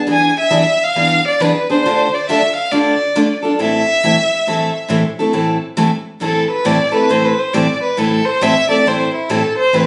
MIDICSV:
0, 0, Header, 1, 3, 480
1, 0, Start_track
1, 0, Key_signature, 0, "minor"
1, 0, Tempo, 438596
1, 91, Time_signature, 4, 2, 24, 8
1, 10798, End_track
2, 0, Start_track
2, 0, Title_t, "Violin"
2, 0, Program_c, 0, 40
2, 138, Note_on_c, 0, 80, 99
2, 405, Note_off_c, 0, 80, 0
2, 436, Note_on_c, 0, 76, 94
2, 920, Note_on_c, 0, 77, 100
2, 936, Note_off_c, 0, 76, 0
2, 1382, Note_off_c, 0, 77, 0
2, 1397, Note_on_c, 0, 74, 79
2, 1548, Note_on_c, 0, 71, 82
2, 1564, Note_off_c, 0, 74, 0
2, 1851, Note_off_c, 0, 71, 0
2, 1874, Note_on_c, 0, 72, 82
2, 2347, Note_on_c, 0, 74, 76
2, 2363, Note_off_c, 0, 72, 0
2, 2505, Note_off_c, 0, 74, 0
2, 2516, Note_on_c, 0, 76, 83
2, 2794, Note_off_c, 0, 76, 0
2, 2802, Note_on_c, 0, 77, 80
2, 2974, Note_on_c, 0, 74, 73
2, 2990, Note_off_c, 0, 77, 0
2, 3765, Note_off_c, 0, 74, 0
2, 3962, Note_on_c, 0, 76, 108
2, 5345, Note_off_c, 0, 76, 0
2, 6826, Note_on_c, 0, 69, 72
2, 7108, Note_off_c, 0, 69, 0
2, 7122, Note_on_c, 0, 71, 79
2, 7290, Note_on_c, 0, 74, 84
2, 7306, Note_off_c, 0, 71, 0
2, 7599, Note_off_c, 0, 74, 0
2, 7605, Note_on_c, 0, 71, 80
2, 7780, Note_on_c, 0, 72, 81
2, 7796, Note_off_c, 0, 71, 0
2, 7934, Note_on_c, 0, 71, 73
2, 7950, Note_off_c, 0, 72, 0
2, 8092, Note_on_c, 0, 72, 78
2, 8109, Note_off_c, 0, 71, 0
2, 8252, Note_on_c, 0, 74, 87
2, 8268, Note_off_c, 0, 72, 0
2, 8561, Note_off_c, 0, 74, 0
2, 8567, Note_on_c, 0, 71, 74
2, 8738, Note_on_c, 0, 69, 74
2, 8755, Note_off_c, 0, 71, 0
2, 9035, Note_on_c, 0, 72, 87
2, 9051, Note_off_c, 0, 69, 0
2, 9226, Note_on_c, 0, 76, 99
2, 9242, Note_off_c, 0, 72, 0
2, 9518, Note_off_c, 0, 76, 0
2, 9524, Note_on_c, 0, 74, 83
2, 9712, Note_on_c, 0, 72, 76
2, 9729, Note_off_c, 0, 74, 0
2, 10010, Note_off_c, 0, 72, 0
2, 10016, Note_on_c, 0, 64, 62
2, 10189, Note_on_c, 0, 69, 72
2, 10205, Note_off_c, 0, 64, 0
2, 10478, Note_off_c, 0, 69, 0
2, 10485, Note_on_c, 0, 72, 89
2, 10666, Note_on_c, 0, 71, 75
2, 10682, Note_off_c, 0, 72, 0
2, 10798, Note_off_c, 0, 71, 0
2, 10798, End_track
3, 0, Start_track
3, 0, Title_t, "Steel-string acoustic guitar"
3, 0, Program_c, 1, 25
3, 73, Note_on_c, 1, 52, 62
3, 75, Note_on_c, 1, 59, 61
3, 80, Note_on_c, 1, 62, 70
3, 85, Note_on_c, 1, 68, 73
3, 323, Note_off_c, 1, 52, 0
3, 324, Note_off_c, 1, 59, 0
3, 327, Note_off_c, 1, 62, 0
3, 329, Note_off_c, 1, 68, 0
3, 552, Note_on_c, 1, 52, 85
3, 552, Note_on_c, 1, 59, 80
3, 559, Note_on_c, 1, 62, 88
3, 560, Note_on_c, 1, 68, 91
3, 689, Note_off_c, 1, 52, 0
3, 689, Note_off_c, 1, 59, 0
3, 693, Note_off_c, 1, 62, 0
3, 693, Note_off_c, 1, 68, 0
3, 1048, Note_on_c, 1, 52, 62
3, 1050, Note_on_c, 1, 59, 68
3, 1052, Note_on_c, 1, 62, 63
3, 1054, Note_on_c, 1, 68, 69
3, 1291, Note_off_c, 1, 52, 0
3, 1292, Note_off_c, 1, 59, 0
3, 1293, Note_off_c, 1, 62, 0
3, 1294, Note_off_c, 1, 68, 0
3, 1534, Note_on_c, 1, 52, 84
3, 1538, Note_on_c, 1, 59, 85
3, 1551, Note_on_c, 1, 62, 88
3, 1554, Note_on_c, 1, 68, 90
3, 1661, Note_off_c, 1, 52, 0
3, 1663, Note_off_c, 1, 59, 0
3, 1669, Note_off_c, 1, 62, 0
3, 1671, Note_off_c, 1, 68, 0
3, 1855, Note_on_c, 1, 68, 60
3, 1864, Note_on_c, 1, 62, 55
3, 1881, Note_on_c, 1, 59, 44
3, 2013, Note_off_c, 1, 68, 0
3, 2017, Note_off_c, 1, 62, 0
3, 2026, Note_off_c, 1, 59, 0
3, 2030, Note_on_c, 1, 50, 66
3, 2031, Note_on_c, 1, 62, 60
3, 2034, Note_on_c, 1, 65, 70
3, 2036, Note_on_c, 1, 57, 59
3, 2038, Note_on_c, 1, 69, 68
3, 2262, Note_off_c, 1, 50, 0
3, 2263, Note_off_c, 1, 62, 0
3, 2265, Note_off_c, 1, 65, 0
3, 2266, Note_off_c, 1, 57, 0
3, 2266, Note_off_c, 1, 69, 0
3, 2504, Note_on_c, 1, 50, 79
3, 2509, Note_on_c, 1, 62, 87
3, 2511, Note_on_c, 1, 57, 81
3, 2515, Note_on_c, 1, 69, 89
3, 2517, Note_on_c, 1, 65, 89
3, 2626, Note_off_c, 1, 50, 0
3, 2629, Note_off_c, 1, 62, 0
3, 2630, Note_off_c, 1, 57, 0
3, 2632, Note_off_c, 1, 69, 0
3, 2633, Note_off_c, 1, 65, 0
3, 2971, Note_on_c, 1, 57, 66
3, 2972, Note_on_c, 1, 50, 67
3, 2976, Note_on_c, 1, 62, 69
3, 2984, Note_on_c, 1, 69, 67
3, 2985, Note_on_c, 1, 65, 62
3, 3213, Note_off_c, 1, 57, 0
3, 3214, Note_off_c, 1, 50, 0
3, 3216, Note_off_c, 1, 62, 0
3, 3220, Note_off_c, 1, 65, 0
3, 3220, Note_off_c, 1, 69, 0
3, 3453, Note_on_c, 1, 50, 83
3, 3456, Note_on_c, 1, 62, 90
3, 3458, Note_on_c, 1, 65, 85
3, 3460, Note_on_c, 1, 57, 77
3, 3468, Note_on_c, 1, 69, 91
3, 3581, Note_off_c, 1, 50, 0
3, 3583, Note_off_c, 1, 62, 0
3, 3584, Note_off_c, 1, 65, 0
3, 3585, Note_off_c, 1, 57, 0
3, 3589, Note_off_c, 1, 69, 0
3, 3747, Note_on_c, 1, 69, 53
3, 3771, Note_on_c, 1, 65, 48
3, 3775, Note_on_c, 1, 62, 45
3, 3919, Note_off_c, 1, 69, 0
3, 3927, Note_off_c, 1, 65, 0
3, 3928, Note_on_c, 1, 45, 63
3, 3930, Note_off_c, 1, 62, 0
3, 3931, Note_on_c, 1, 64, 67
3, 3932, Note_on_c, 1, 52, 67
3, 3935, Note_on_c, 1, 60, 70
3, 3937, Note_on_c, 1, 57, 68
3, 3942, Note_on_c, 1, 69, 68
3, 4172, Note_off_c, 1, 45, 0
3, 4174, Note_off_c, 1, 52, 0
3, 4174, Note_off_c, 1, 64, 0
3, 4175, Note_off_c, 1, 60, 0
3, 4177, Note_off_c, 1, 57, 0
3, 4179, Note_off_c, 1, 69, 0
3, 4415, Note_on_c, 1, 52, 80
3, 4417, Note_on_c, 1, 45, 69
3, 4421, Note_on_c, 1, 57, 70
3, 4421, Note_on_c, 1, 60, 83
3, 4422, Note_on_c, 1, 64, 79
3, 4430, Note_on_c, 1, 69, 80
3, 4542, Note_off_c, 1, 52, 0
3, 4543, Note_off_c, 1, 45, 0
3, 4545, Note_off_c, 1, 57, 0
3, 4545, Note_off_c, 1, 60, 0
3, 4546, Note_off_c, 1, 64, 0
3, 4550, Note_off_c, 1, 69, 0
3, 4891, Note_on_c, 1, 45, 63
3, 4895, Note_on_c, 1, 52, 60
3, 4899, Note_on_c, 1, 64, 64
3, 4901, Note_on_c, 1, 60, 63
3, 4902, Note_on_c, 1, 57, 61
3, 4905, Note_on_c, 1, 69, 65
3, 5133, Note_off_c, 1, 45, 0
3, 5135, Note_off_c, 1, 52, 0
3, 5138, Note_off_c, 1, 64, 0
3, 5139, Note_off_c, 1, 57, 0
3, 5139, Note_off_c, 1, 60, 0
3, 5141, Note_off_c, 1, 69, 0
3, 5346, Note_on_c, 1, 45, 83
3, 5357, Note_on_c, 1, 60, 83
3, 5360, Note_on_c, 1, 52, 84
3, 5361, Note_on_c, 1, 57, 91
3, 5364, Note_on_c, 1, 69, 85
3, 5367, Note_on_c, 1, 64, 85
3, 5488, Note_off_c, 1, 45, 0
3, 5493, Note_off_c, 1, 60, 0
3, 5495, Note_off_c, 1, 52, 0
3, 5495, Note_off_c, 1, 57, 0
3, 5497, Note_off_c, 1, 69, 0
3, 5498, Note_off_c, 1, 64, 0
3, 5680, Note_on_c, 1, 69, 57
3, 5687, Note_on_c, 1, 64, 49
3, 5693, Note_on_c, 1, 60, 46
3, 5695, Note_on_c, 1, 57, 45
3, 5821, Note_off_c, 1, 57, 0
3, 5828, Note_off_c, 1, 60, 0
3, 5829, Note_off_c, 1, 69, 0
3, 5830, Note_off_c, 1, 64, 0
3, 5834, Note_on_c, 1, 57, 58
3, 5836, Note_on_c, 1, 52, 60
3, 5837, Note_on_c, 1, 45, 58
3, 5841, Note_on_c, 1, 60, 68
3, 5842, Note_on_c, 1, 69, 62
3, 5843, Note_on_c, 1, 64, 68
3, 6085, Note_off_c, 1, 57, 0
3, 6086, Note_off_c, 1, 45, 0
3, 6086, Note_off_c, 1, 52, 0
3, 6088, Note_off_c, 1, 60, 0
3, 6089, Note_off_c, 1, 64, 0
3, 6089, Note_off_c, 1, 69, 0
3, 6313, Note_on_c, 1, 52, 84
3, 6314, Note_on_c, 1, 60, 85
3, 6315, Note_on_c, 1, 45, 77
3, 6317, Note_on_c, 1, 57, 79
3, 6322, Note_on_c, 1, 64, 85
3, 6327, Note_on_c, 1, 69, 91
3, 6451, Note_off_c, 1, 52, 0
3, 6451, Note_off_c, 1, 60, 0
3, 6452, Note_off_c, 1, 45, 0
3, 6453, Note_off_c, 1, 57, 0
3, 6456, Note_off_c, 1, 64, 0
3, 6458, Note_off_c, 1, 69, 0
3, 6786, Note_on_c, 1, 45, 68
3, 6794, Note_on_c, 1, 52, 63
3, 6797, Note_on_c, 1, 57, 60
3, 6803, Note_on_c, 1, 60, 62
3, 6804, Note_on_c, 1, 64, 67
3, 6807, Note_on_c, 1, 69, 64
3, 7040, Note_off_c, 1, 45, 0
3, 7044, Note_off_c, 1, 52, 0
3, 7046, Note_off_c, 1, 57, 0
3, 7049, Note_off_c, 1, 60, 0
3, 7049, Note_off_c, 1, 64, 0
3, 7051, Note_off_c, 1, 69, 0
3, 7276, Note_on_c, 1, 52, 93
3, 7278, Note_on_c, 1, 45, 74
3, 7280, Note_on_c, 1, 57, 85
3, 7282, Note_on_c, 1, 60, 86
3, 7290, Note_on_c, 1, 69, 88
3, 7292, Note_on_c, 1, 64, 95
3, 7412, Note_off_c, 1, 52, 0
3, 7413, Note_off_c, 1, 45, 0
3, 7414, Note_off_c, 1, 57, 0
3, 7415, Note_off_c, 1, 60, 0
3, 7419, Note_off_c, 1, 69, 0
3, 7420, Note_off_c, 1, 64, 0
3, 7569, Note_on_c, 1, 69, 55
3, 7578, Note_on_c, 1, 64, 49
3, 7585, Note_on_c, 1, 60, 49
3, 7594, Note_on_c, 1, 57, 40
3, 7749, Note_off_c, 1, 69, 0
3, 7754, Note_off_c, 1, 64, 0
3, 7757, Note_off_c, 1, 60, 0
3, 7761, Note_off_c, 1, 57, 0
3, 7763, Note_on_c, 1, 45, 65
3, 7768, Note_on_c, 1, 52, 58
3, 7774, Note_on_c, 1, 60, 72
3, 7774, Note_on_c, 1, 64, 63
3, 7776, Note_on_c, 1, 57, 64
3, 7778, Note_on_c, 1, 69, 69
3, 8008, Note_off_c, 1, 45, 0
3, 8010, Note_off_c, 1, 52, 0
3, 8014, Note_off_c, 1, 60, 0
3, 8014, Note_off_c, 1, 64, 0
3, 8015, Note_off_c, 1, 57, 0
3, 8016, Note_off_c, 1, 69, 0
3, 8244, Note_on_c, 1, 45, 73
3, 8253, Note_on_c, 1, 52, 81
3, 8253, Note_on_c, 1, 57, 87
3, 8253, Note_on_c, 1, 64, 92
3, 8256, Note_on_c, 1, 69, 84
3, 8259, Note_on_c, 1, 60, 94
3, 8375, Note_off_c, 1, 45, 0
3, 8380, Note_off_c, 1, 52, 0
3, 8380, Note_off_c, 1, 57, 0
3, 8380, Note_off_c, 1, 64, 0
3, 8381, Note_off_c, 1, 69, 0
3, 8383, Note_off_c, 1, 60, 0
3, 8723, Note_on_c, 1, 45, 70
3, 8727, Note_on_c, 1, 52, 70
3, 8733, Note_on_c, 1, 57, 73
3, 8737, Note_on_c, 1, 69, 71
3, 8738, Note_on_c, 1, 60, 65
3, 8739, Note_on_c, 1, 64, 68
3, 8967, Note_off_c, 1, 45, 0
3, 8969, Note_off_c, 1, 52, 0
3, 8973, Note_off_c, 1, 57, 0
3, 8974, Note_off_c, 1, 69, 0
3, 8975, Note_off_c, 1, 60, 0
3, 8975, Note_off_c, 1, 64, 0
3, 9207, Note_on_c, 1, 45, 85
3, 9208, Note_on_c, 1, 57, 90
3, 9217, Note_on_c, 1, 52, 85
3, 9218, Note_on_c, 1, 64, 87
3, 9221, Note_on_c, 1, 60, 92
3, 9224, Note_on_c, 1, 69, 96
3, 9336, Note_off_c, 1, 45, 0
3, 9337, Note_off_c, 1, 57, 0
3, 9341, Note_off_c, 1, 52, 0
3, 9341, Note_off_c, 1, 64, 0
3, 9343, Note_off_c, 1, 60, 0
3, 9344, Note_off_c, 1, 69, 0
3, 9506, Note_on_c, 1, 69, 59
3, 9514, Note_on_c, 1, 64, 53
3, 9530, Note_on_c, 1, 60, 54
3, 9538, Note_on_c, 1, 57, 46
3, 9676, Note_off_c, 1, 69, 0
3, 9680, Note_off_c, 1, 64, 0
3, 9688, Note_off_c, 1, 60, 0
3, 9692, Note_off_c, 1, 57, 0
3, 9694, Note_on_c, 1, 52, 63
3, 9696, Note_on_c, 1, 45, 63
3, 9706, Note_on_c, 1, 64, 72
3, 9707, Note_on_c, 1, 57, 57
3, 9708, Note_on_c, 1, 60, 71
3, 9709, Note_on_c, 1, 69, 69
3, 9932, Note_off_c, 1, 52, 0
3, 9933, Note_off_c, 1, 45, 0
3, 9938, Note_off_c, 1, 57, 0
3, 9938, Note_off_c, 1, 64, 0
3, 9939, Note_off_c, 1, 60, 0
3, 9940, Note_off_c, 1, 69, 0
3, 10171, Note_on_c, 1, 45, 79
3, 10174, Note_on_c, 1, 57, 82
3, 10175, Note_on_c, 1, 64, 85
3, 10178, Note_on_c, 1, 52, 80
3, 10178, Note_on_c, 1, 60, 89
3, 10180, Note_on_c, 1, 69, 93
3, 10297, Note_off_c, 1, 45, 0
3, 10298, Note_off_c, 1, 57, 0
3, 10299, Note_off_c, 1, 64, 0
3, 10300, Note_off_c, 1, 52, 0
3, 10300, Note_off_c, 1, 60, 0
3, 10302, Note_off_c, 1, 69, 0
3, 10649, Note_on_c, 1, 45, 64
3, 10649, Note_on_c, 1, 52, 68
3, 10657, Note_on_c, 1, 60, 70
3, 10661, Note_on_c, 1, 57, 68
3, 10661, Note_on_c, 1, 64, 66
3, 10663, Note_on_c, 1, 69, 68
3, 10798, Note_off_c, 1, 45, 0
3, 10798, Note_off_c, 1, 52, 0
3, 10798, Note_off_c, 1, 57, 0
3, 10798, Note_off_c, 1, 60, 0
3, 10798, Note_off_c, 1, 64, 0
3, 10798, Note_off_c, 1, 69, 0
3, 10798, End_track
0, 0, End_of_file